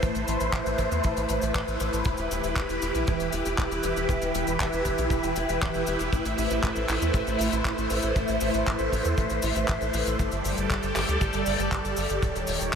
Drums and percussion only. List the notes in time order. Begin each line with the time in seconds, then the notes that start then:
0.03 kick, closed hi-hat, cabasa
0.15 closed hi-hat, cabasa
0.28 closed hi-hat, cabasa
0.40 closed hi-hat, cabasa
0.53 kick, clap, closed hi-hat, cabasa
0.66 closed hi-hat, cabasa
0.78 kick, closed hi-hat, cabasa
0.91 closed hi-hat, cabasa
1.04 kick, closed hi-hat, cabasa
1.17 closed hi-hat, cabasa
1.29 closed hi-hat, cabasa
1.42 closed hi-hat, cabasa
1.55 kick, clap, closed hi-hat, cabasa
1.68 closed hi-hat, cabasa
1.80 closed hi-hat, cabasa
1.93 closed hi-hat, cabasa
2.04 kick, closed hi-hat, cabasa
2.17 closed hi-hat, cabasa
2.31 closed hi-hat, cabasa
2.44 closed hi-hat, cabasa
2.56 kick, clap, closed hi-hat, cabasa
2.69 closed hi-hat, cabasa
2.82 closed hi-hat, cabasa
2.94 closed hi-hat, cabasa
3.07 kick, closed hi-hat, cabasa
3.20 closed hi-hat, cabasa
3.32 closed hi-hat, cabasa
3.45 closed hi-hat, cabasa
3.58 kick, clap, closed hi-hat, cabasa
3.71 closed hi-hat, cabasa
3.83 closed hi-hat, cabasa
3.96 closed hi-hat, cabasa
4.09 kick, closed hi-hat, cabasa
4.22 closed hi-hat, cabasa
4.35 closed hi-hat, cabasa
4.47 closed hi-hat, cabasa
4.60 kick, clap, closed hi-hat, cabasa
4.72 closed hi-hat, cabasa
4.85 kick, closed hi-hat, cabasa
4.98 closed hi-hat, cabasa
5.10 kick, closed hi-hat, cabasa
5.23 closed hi-hat, cabasa
5.36 closed hi-hat, cabasa
5.49 closed hi-hat, cabasa
5.61 kick, clap, closed hi-hat, cabasa
5.74 closed hi-hat, cabasa
5.87 closed hi-hat, cabasa
5.99 closed hi-hat, cabasa
6.13 kick, closed hi-hat, cabasa
6.25 closed hi-hat, cabasa
6.38 open hi-hat, cabasa
6.50 closed hi-hat, cabasa
6.63 kick, clap, closed hi-hat, cabasa
6.76 closed hi-hat, cabasa
6.88 clap, open hi-hat, cabasa
7.02 closed hi-hat, cabasa
7.14 kick, closed hi-hat, cabasa
7.27 closed hi-hat, cabasa
7.39 open hi-hat, cabasa
7.52 closed hi-hat, cabasa
7.65 kick, clap, closed hi-hat, cabasa
7.78 closed hi-hat, cabasa
7.90 open hi-hat, cabasa
8.02 closed hi-hat, cabasa
8.16 kick, closed hi-hat, cabasa
8.28 closed hi-hat, cabasa
8.41 open hi-hat, cabasa
8.54 closed hi-hat, cabasa
8.66 kick, clap, closed hi-hat, cabasa
8.79 closed hi-hat, cabasa
8.92 kick, open hi-hat, cabasa
9.05 closed hi-hat, cabasa
9.18 kick, closed hi-hat, cabasa
9.30 closed hi-hat, cabasa
9.42 open hi-hat, cabasa
9.56 closed hi-hat, cabasa
9.68 kick, clap, closed hi-hat, cabasa
9.81 closed hi-hat, cabasa
9.93 open hi-hat, cabasa
10.06 closed hi-hat, cabasa
10.19 kick, closed hi-hat, cabasa
10.31 closed hi-hat, cabasa
10.44 open hi-hat, cabasa
10.57 closed hi-hat, cabasa
10.70 kick, clap, closed hi-hat, cabasa
10.82 closed hi-hat, cabasa
10.95 clap, open hi-hat, cabasa
11.08 closed hi-hat, cabasa
11.21 kick, closed hi-hat, cabasa
11.33 closed hi-hat, cabasa
11.46 open hi-hat, cabasa
11.59 closed hi-hat, cabasa
11.72 kick, clap, closed hi-hat, cabasa
11.85 closed hi-hat, cabasa
11.97 open hi-hat, cabasa
12.09 closed hi-hat, cabasa
12.22 kick, closed hi-hat, cabasa
12.36 closed hi-hat, cabasa
12.47 open hi-hat, cabasa
12.61 closed hi-hat, cabasa